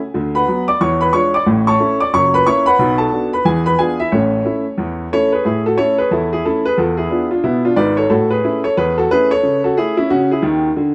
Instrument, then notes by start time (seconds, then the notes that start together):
grand piano
0.14 D2 D3
0.35 B4 F#5 B5
0.48 F#3 B3 F#4
0.68 D5 D6
0.81 E2 E3 C#5 C#6
1.01 B4 B5
1.13 G#3 D4 F4 C#5 C#6
1.34 D5 D6
1.46 A1 A2
1.67 C#5 A5 C#6
1.80 A3 C#4 E4
2.00 D5 D6
2.13 F#1 F#2 C#5 C#6
2.34 B4 B5
2.47 A#3 C#4 E4 C#5 C#6
2.66 B4 F#5 B5
2.79 B1 B2
2.98 A4 A5
3.12 B3 D4 F#4
3.33 B4 B5
3.45 E2 E3 G#4 G#5
3.66 B4 B5
3.78 B3 D4 F4 G#4 G#5
4.00 E4 E5
4.12 A1 A2 C#4 A4 C#5
4.45 A3 C#4 E4
4.78 E2 E3
5.12 A3 C#4 E4 A4 C#5
5.33 G#4 B4
5.45 A2 E4 G#4
5.66 F#4 A4
5.78 A3 C#4 E4 A4 C#5
5.98 G#4 B4
6.11 E2 E4 A4
6.33 E4 G#4
6.45 A3 C#4 E4 A4
6.66 G#4 B4
6.78 E2 F4 A4
6.97 E4 G#4
7.10 B3 D4 F4
7.31 D4 F4
7.44 B2 B3 E4
7.65 D4 F4
7.76 G#1 G#2 B4 D5
7.97 A4 C#5
8.10 A2 F#4 A4
8.31 G#4 B4
8.44 A3 C#4 E4
8.64 A4 C#5
8.77 E2 G#4 B4
8.98 F#4 A4
9.11 A3 C#4 E4 G#4 B4
9.31 A4 C#5
9.43 C#3
9.64 F#4 A4
9.77 A3 E4 G#4
9.97 C#4 E4
10.10 C#3 C#4 F#4
10.31 E4 G#4
10.42 D#2 D#3
10.77 D3